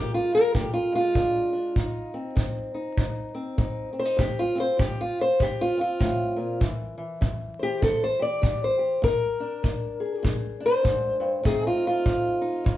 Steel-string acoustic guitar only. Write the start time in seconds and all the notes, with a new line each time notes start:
Already playing: A#2 G#3 G4
0.14 F4
0.35 A#4
0.55 A#2 G4
0.74 F4
0.92 G#3 F4
1.15 A#2 D4
1.53 D4
1.76 F2 D#4
2.14 C4
2.36 F2
2.74 D#4
2.97 F2
3.34 C4
3.58 F2 D#4
3.93 C4
3.99 C5
4.05 D#4
4.17 F2 G4
4.39 F4
4.55 C4
4.60 C5
4.78 F2 G4
5.01 F4
5.21 C5
5.40 F2 G4
5.61 F4
5.77 C4 F4
6.00 A2
6.36 A#2
6.60 C3 E3
6.98 E3
7.21 C3
7.59 G4 C5
7.82 C3 A4
8.04 C5
8.19 G4 D5
8.42 C3 G4
8.64 C5
8.79 G4
9.02 A#2 A#4
9.40 D4
9.63 A#2
10.00 G#4
10.23 A#2
10.60 D4
10.66 C5
10.83 G#2
11.20 G2
11.43 F2 A3 C4 D#4 G#4
11.67 F4
11.87 F4
12.05 F2
12.41 D#4
12.64 F2